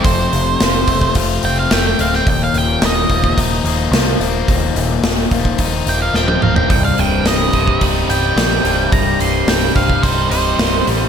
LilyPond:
<<
  \new Staff \with { instrumentName = "Lead electric guitar" } { \time 4/4 \key c \dorian \tempo 4 = 108 c''2 r8 g''16 f''16 g''16 g''16 f''16 g''16 | g''16 f''16 g''8 ees''4 r2 | r2 r8 g''16 f''16 g''16 g''16 f''16 g''16 | g''16 f''16 g''8 ees''4 r8 g''4. |
bes''8 c'''8 g''8 f''8 c''8 c''4 r8 | }
  \new Staff \with { instrumentName = "Overdriven electric guitar" } { \clef bass \time 4/4 \key c \dorian <f, a c' f'>8 c8 f8 a8 f'8 c'8 a8 c'8 | ees,8 bes,8 ees8 f8 ees'8 bes8 f8 bes8 | ees,8 bes,8 ees8 f8 ees'8 bes8 f8 bes8 | c,8 g,8 g,8 c8 ees'8 g8 c8 g8 |
c,8 g,8 g,8 c8 ees'8 g8 c8 g8 | }
  \new Staff \with { instrumentName = "Overdriven electric guitar" } { \clef bass \time 4/4 \key c \dorian r1 | r1 | r1 | c,8 c8 g8 c8 g8 ees'8 c8 g,8 |
c,8 c8 g8 c8 g8 ees'8 c8 g,8 | }
  \new Staff \with { instrumentName = "Picked electric bass" } { \clef bass \time 4/4 \key c \dorian f,,8 f,,8 f,,8 f,,8 f,,8 f,,8 f,,8 d,,8 | ees,,8 ees,,8 ees,,8 ees,,8 ees,,8 ees,,8 c,8 ees,,8 | ees,,8 ees,,8 ees,,8 ees,,8 ees,,8 ees,,8 ees,,8 d,,8 | c,,8 c,,8 c,,8 c,,8 c,,8 c,,8 bes,,8 c,,8 |
c,,8 c,,8 c,,8 c,,8 c,,8 c,,8 c,,8 a,,8 | }
  \new DrumStaff \with { instrumentName = "Drums" } \drummode { \time 4/4 <hho bd>8 hho8 <hho sn>8 <hho bd>16 bd16 <hho bd>8 hho8 <hho sn>8 hho16 sn16 | <hho bd>8 hho8 <hho sn>8 <hho bd>16 bd16 <hho bd>8 hho8 <hho sn>8 hho8 | <hho bd>8 hho8 <hho sn>8 <hho bd>16 bd16 <hho bd>8 hho8 sn16 tommh16 toml16 tomfh16 | <hho bd>8 hho8 <hho sn>8 <hho bd>16 bd16 <hho bd>8 hho8 <hho sn>8 hho8 |
<hho bd>8 hho8 <hho sn>8 <hho bd>16 bd16 <hho bd>8 hho8 <hho sn>8 hho8 | }
>>